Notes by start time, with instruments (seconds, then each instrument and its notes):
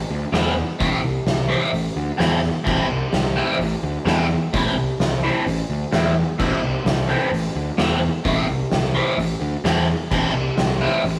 0.10 picked electric bass D2
0.32 picked electric bass E2, overdriven electric guitar A2 E3 A3 C4 E4, snare, open hi-hat
0.79 picked electric bass A1, overdriven electric guitar A2 E3 A3 C4 E4, kick, open hi-hat
1.03 picked electric bass C2
1.26 picked electric bass C2, snare, open hi-hat
1.48 overdriven electric guitar A2 E3 A3 C4 E4
1.73 picked electric bass A1, open hi-hat
1.96 picked electric bass D2
2.18 picked electric bass E2, overdriven electric guitar A2 E3 A3 C4 E4, snare, open hi-hat
2.43 snare
2.64 picked electric bass A1, overdriven electric guitar A2 E3 A3 C4 E4, kick, crash
2.90 picked electric bass C2
3.13 picked electric bass C2, snare, open hi-hat
3.25 snare
3.35 overdriven electric guitar A2 E3 A3 C4 E4
3.59 picked electric bass A1, open hi-hat
3.83 picked electric bass D2
4.05 picked electric bass E2, overdriven electric guitar A2 E3 A3 C4 E4, snare, open hi-hat
4.53 picked electric bass A1, overdriven electric guitar A2 E3 A3 C4 E4, kick, open hi-hat
4.75 picked electric bass C2
5.00 picked electric bass C2, snare, open hi-hat
5.23 overdriven electric guitar A2 E3 A3 C4 E4
5.46 picked electric bass A1, open hi-hat
5.70 picked electric bass D2
5.92 picked electric bass E2, overdriven electric guitar A2 E3 A3 C4 E4, snare, open hi-hat
6.39 picked electric bass A1, overdriven electric guitar A2 E3 A3 C4 E4, kick, crash
6.63 picked electric bass C2
6.85 picked electric bass C2, snare, open hi-hat
7.08 overdriven electric guitar A2 E3 A3 C4 E4
7.32 picked electric bass A1, open hi-hat
7.55 picked electric bass D2
7.77 picked electric bass E2, overdriven electric guitar A2 E3 A3 C4 E4, snare, open hi-hat
8.24 picked electric bass A1, overdriven electric guitar A2 E3 A3 C4 E4, kick, open hi-hat
8.49 picked electric bass C2
8.72 picked electric bass C2, snare, open hi-hat
8.83 snare
8.94 overdriven electric guitar A2 E3 A3 C4 E4
9.18 picked electric bass A1, open hi-hat
9.41 picked electric bass D2
9.64 picked electric bass E2, overdriven electric guitar A2 E3 A3 C4 E4, snare, open hi-hat
10.11 picked electric bass A1, overdriven electric guitar A2 E3 A3 C4 E4, kick, crash
10.34 picked electric bass C2
10.57 picked electric bass C2, snare, open hi-hat
10.70 snare
10.81 overdriven electric guitar A2 E3 A3 C4 E4
11.04 picked electric bass A1, open hi-hat